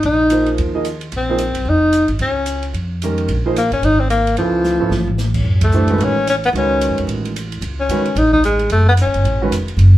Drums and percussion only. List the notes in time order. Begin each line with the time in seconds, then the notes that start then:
0.03 ride
0.30 hi-hat pedal, ride
0.46 ride
0.58 ride
0.85 hi-hat pedal, ride
1.01 ride
1.12 ride
1.38 hi-hat pedal, ride
1.55 ride
1.93 hi-hat pedal, ride
2.08 ride
2.19 ride
2.46 hi-hat pedal, ride
2.63 ride
2.74 ride
3.02 hi-hat pedal, ride
3.18 ride
3.28 ride
3.56 hi-hat pedal, ride
3.72 ride
3.83 ride
4.10 hi-hat pedal, ride
4.27 ride
4.37 ride
4.64 snare, hi-hat pedal
4.91 snare
5.07 floor tom
5.18 snare, hi-hat pedal
5.34 kick, crash
5.61 kick, ride
5.72 hi-hat pedal
5.88 ride
6.00 ride
6.27 hi-hat pedal, ride
6.44 ride
6.55 ride
6.81 hi-hat pedal, ride
6.98 ride
7.09 ride
7.25 ride
7.36 hi-hat pedal, ride
7.52 ride
7.62 ride
7.89 hi-hat pedal, ride
8.05 ride
8.16 ride
8.33 kick
8.44 hi-hat pedal, ride
8.59 ride
8.70 ride
8.97 hi-hat pedal, ride
9.14 ride
9.25 ride
9.52 hi-hat pedal, ride
9.68 ride
9.79 ride